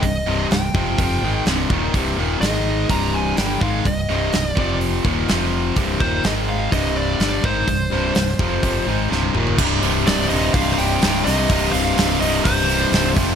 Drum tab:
CC |----------------|----------------|----------------|----------------|
HH |o---o---o---o---|o---o---o---o---|o---o---o---o---|o---o---o---o---|
SD |----o-------o---|----oo------o---|----o-------o---|----o-------o---|
T1 |----------------|----------------|----------------|----------------|
T2 |----------------|----------------|----------------|----------------|
FT |----------------|----------------|----------------|----------------|
BD |o-----o-o-----o-|o-------o-----o-|o-----o---o-----|o-o-----o-----o-|

CC |----------------|x---------------|----------------|
HH |o---o---o-------|--o-o-o-o-o-o-o-|o-o-o-o-o-o-o-o-|
SD |----oo------o---|----o-------o-o-|----o-------o-o-|
T1 |-------------o--|----------------|----------------|
T2 |--------------o-|----------------|----------------|
FT |---------------o|----------------|----------------|
BD |o-----o-o-------|o-------o-------|o-------o-----o-|